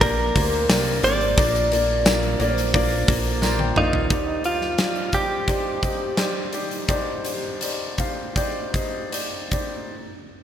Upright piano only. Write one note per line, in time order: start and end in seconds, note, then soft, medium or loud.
0.00 1.39 A#2 medium
0.00 0.35 A#3 loud
0.00 0.35 D4 medium
0.00 0.35 G4 medium
0.00 0.35 A#4 loud
0.00 0.69 D5 loud
0.35 0.66 A#3 medium
0.35 0.66 D4 medium
0.35 0.66 G4 medium
0.35 0.66 A#4 medium
0.35 0.66 C5 medium
0.69 1.00 A#3 medium
0.69 1.00 D4 medium
0.69 1.00 G4 medium
0.69 1.00 A#4 medium
0.69 1.00 D5 medium
1.03 1.34 A#3 medium
1.03 1.34 D4 medium
1.03 1.35 G4 medium
1.03 1.35 A#4 medium
1.03 1.35 C5 medium
1.37 1.68 A#3 loud
1.37 1.68 D4 medium
1.37 1.69 F4 medium
1.37 1.69 A#4 medium
1.37 1.69 D5 loud
1.71 2.03 A#3 medium
1.71 2.03 D4 medium
1.71 2.03 F4 medium
1.71 2.03 A#4 medium
1.71 2.03 D5 medium
2.05 2.36 A#3 medium
2.05 2.37 D4 medium
2.05 2.37 F4 medium
2.05 2.37 A#4 medium
2.05 2.37 D5 medium
2.39 2.71 A#3 medium
2.39 2.71 D4 medium
2.39 2.71 F4 medium
2.39 2.71 A#4 medium
2.39 2.71 D5 loud
2.74 3.05 A#3 loud
2.74 3.05 D4 loud
2.74 3.05 F4 loud
2.74 3.05 A#4 loud
2.74 3.05 D5 loud
3.07 3.39 A#3 medium
3.07 3.39 D4 medium
3.07 3.39 F4 medium
3.07 3.39 A#4 medium
3.07 3.39 D5 medium
3.42 3.73 A#3 medium
3.42 3.73 D4 medium
3.42 3.73 F4 medium
3.42 3.73 A#4 medium
3.42 3.73 C5 loud
3.42 3.58 A#5 medium
3.59 3.75 G5 medium
3.76 4.07 A#3 medium
3.76 4.07 F4 medium
3.76 4.08 A#4 medium
3.76 4.07 D5 medium
3.76 4.08 F5 loud
4.11 6.85 C2 medium
4.11 6.85 G2 medium
4.11 4.41 D#4 medium
4.11 4.42 G4 medium
4.11 4.42 C5 medium
4.11 4.42 D5 medium
4.45 4.76 D#4 medium
4.45 4.76 G4 medium
4.45 4.76 C5 medium
4.45 4.76 F5 medium
4.79 5.10 D#4 medium
4.79 5.10 G4 medium
4.79 5.10 C5 medium
4.79 5.10 D5 medium
5.13 5.44 D#4 medium
5.13 5.45 G4 medium
5.13 5.45 C5 medium
5.13 5.45 D5 medium
5.48 5.79 D#4 medium
5.48 5.80 G4 medium
5.48 5.80 C5 medium
5.48 5.80 D5 medium
5.83 6.14 D#4 medium
5.83 6.14 G4 medium
5.83 6.15 C5 medium
5.83 6.15 D#5 medium
6.18 6.50 D#4 medium
6.18 6.50 G4 medium
6.18 6.50 C5 medium
6.18 6.50 D5 medium
6.53 6.85 D#4 medium
6.53 6.86 G4 medium
6.53 6.86 C5 medium
6.53 6.86 D5 medium
6.89 9.88 C2 medium
6.89 9.88 G2 medium
6.89 7.22 D#4 medium
6.89 7.22 G4 medium
6.89 7.22 C5 medium
6.89 7.22 D5 loud
7.25 7.58 D#4 medium
7.25 7.58 G4 medium
7.25 7.58 C5 medium
7.25 7.58 D5 medium
7.62 7.95 D#4 medium
7.62 7.95 G4 medium
7.62 7.95 C5 medium
7.62 7.95 D5 medium
7.98 8.32 D#4 medium
7.98 8.33 G4 medium
7.98 8.33 C5 medium
7.98 8.33 F5 medium
8.35 8.70 D#4 medium
8.35 8.70 G4 medium
8.35 8.70 C5 medium
8.35 8.71 D5 medium
8.73 9.09 D#4 medium
8.73 9.09 G4 medium
8.73 9.09 C5 medium
8.73 9.09 D#5 medium
9.12 9.48 D#4 medium
9.12 9.48 G4 medium
9.12 9.48 C5 medium
9.12 9.48 D5 medium
9.51 9.88 D#4 medium
9.51 9.88 G4 medium
9.51 9.88 C5 medium
9.51 9.88 D5 medium